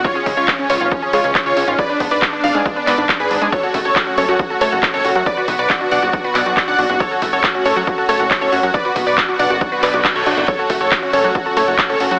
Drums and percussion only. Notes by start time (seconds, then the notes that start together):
0.05 kick, closed hi-hat
0.16 closed hi-hat
0.26 kick, open hi-hat
0.37 closed hi-hat
0.48 kick, clap, closed hi-hat
0.59 closed hi-hat
0.70 open hi-hat
0.81 closed hi-hat
0.91 kick, closed hi-hat
1.02 closed hi-hat
1.13 open hi-hat
1.24 closed hi-hat
1.35 kick, clap, closed hi-hat
1.46 closed hi-hat
1.57 open hi-hat
1.68 closed hi-hat
1.79 kick, closed hi-hat
1.89 closed hi-hat
2.00 kick, open hi-hat
2.11 open hi-hat
2.22 kick, clap, closed hi-hat
2.33 closed hi-hat
2.44 open hi-hat
2.55 closed hi-hat
2.66 kick, closed hi-hat
2.76 closed hi-hat
2.87 clap, open hi-hat
2.98 closed hi-hat
3.09 kick, clap, closed hi-hat
3.20 closed hi-hat
3.31 open hi-hat
3.42 closed hi-hat
3.52 kick, closed hi-hat
3.63 closed hi-hat
3.74 kick, open hi-hat
3.85 closed hi-hat
3.96 kick, clap, closed hi-hat
4.07 closed hi-hat
4.18 open hi-hat
4.28 closed hi-hat
4.39 kick, closed hi-hat
4.50 closed hi-hat
4.61 open hi-hat
4.72 closed hi-hat
4.83 kick, clap, closed hi-hat
4.94 closed hi-hat
5.05 open hi-hat
5.15 closed hi-hat
5.26 kick, closed hi-hat
5.37 closed hi-hat
5.48 kick, open hi-hat
5.59 closed hi-hat
5.70 kick, clap, closed hi-hat
5.81 closed hi-hat
5.91 open hi-hat
6.02 closed hi-hat
6.13 kick, closed hi-hat
6.24 closed hi-hat
6.35 clap, open hi-hat
6.46 closed hi-hat
6.57 kick, clap, closed hi-hat
6.68 closed hi-hat
6.79 open hi-hat
6.89 closed hi-hat
7.00 kick, closed hi-hat
7.11 closed hi-hat
7.22 kick, open hi-hat
7.33 closed hi-hat
7.44 kick, clap, closed hi-hat
7.55 closed hi-hat
7.65 open hi-hat
7.76 closed hi-hat
7.87 kick, closed hi-hat
7.98 closed hi-hat
8.09 open hi-hat
8.31 kick, clap, closed hi-hat
8.42 closed hi-hat
8.53 open hi-hat
8.63 closed hi-hat
8.74 kick, closed hi-hat
8.85 closed hi-hat
8.96 kick, open hi-hat
9.07 open hi-hat
9.18 kick, clap
9.29 closed hi-hat
9.39 open hi-hat
9.50 closed hi-hat
9.61 kick, closed hi-hat
9.72 closed hi-hat
9.83 clap, open hi-hat
9.94 closed hi-hat
10.05 kick, clap, closed hi-hat
10.15 closed hi-hat
10.26 open hi-hat
10.37 closed hi-hat
10.48 kick, closed hi-hat, ride
10.59 closed hi-hat
10.70 kick, open hi-hat, ride
10.81 closed hi-hat
10.92 kick, clap, closed hi-hat, ride
11.02 closed hi-hat
11.13 open hi-hat, ride
11.24 closed hi-hat
11.35 kick, closed hi-hat, ride
11.46 closed hi-hat
11.57 open hi-hat, ride
11.68 closed hi-hat
11.79 kick, clap, closed hi-hat, ride
11.90 closed hi-hat
12.00 open hi-hat, ride
12.11 closed hi-hat